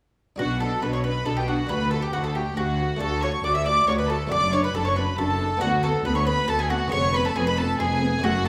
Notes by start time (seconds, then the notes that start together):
0.36 B1 B2 D4 F#4 F#5
0.60 D4 A4 A5
0.82 B1 B2 D4 B4 B5
0.93 C#5 C#6
1.04 D4 B4 B5
1.26 B1 B2 D4 A4 A5
1.37 G4 G5
1.48 D4 F#4 F#5
1.67 D2 D4 F#4 B4 B5
1.91 F#4 A4 A5
2.02 G4 G5
2.13 D2 F#4 F#5
2.24 A4 A5
2.34 F#4 G4 G5
2.56 D2 F#4 F#5
2.79 F#4
2.97 A3 D4 F#4 A4 A5
3.01 D2 F#4 A4
3.22 F#4 C#5 C#6
3.44 D2 F#4 D5 D6
3.55 E5 E6
3.66 F#4 D5 D6
3.87 D2 F#4 C#5 C#6
3.98 B4 B5
4.09 F#4 A4 A5
4.27 A3 D4 F#4 D5
4.31 F#1 F#2 D4 D5 D6
4.52 D4 C#5 C#6
4.64 B4 B5
4.74 F#1 F#2 D4 A4 A5
4.85 C#5 C#6
4.96 D4 B4 B5
5.18 F#1 F#2 D4 A4 A5
5.40 D4
5.57 B3 D4 F#4
5.61 D2 B3 F#4 F#5
5.83 B3 A4 A5
6.05 D2 B3 B4 B5
6.15 C#5 C#6
6.27 B3 B4 B5
6.48 D2 B3 A4 A5
6.59 G#4 G#5
6.70 B3 F#4 F#5
6.88 B3 C#4 G#4 C#5 C#6
6.92 F1 F2 B3 C#5
7.14 B3 B4 B5
7.25 A4 A5
7.36 F1 F2 B3 G#4 G#5
7.47 B4 B5
7.57 B3 A4 A5
7.79 F1 F2 B3 G#4 G#5
8.02 B3
8.19 A3 C#4 F#4 F#5
8.23 F#1 F#2 A3 F#4
8.45 A5